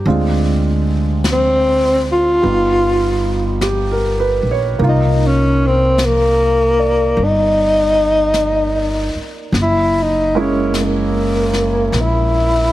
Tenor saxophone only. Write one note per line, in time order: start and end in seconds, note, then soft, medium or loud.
1.32 2.05 C4 medium
2.12 3.60 F4 medium
4.88 5.28 D#4 medium
5.27 5.68 C#4 medium
5.67 6.06 C4 medium
6.05 7.25 A#3 medium
7.24 9.20 D#4 medium
9.62 10.04 E4 medium
10.02 10.42 D#4 medium
10.40 10.82 C#4 medium
10.80 12.02 A#3 medium
12.01 12.72 E4 medium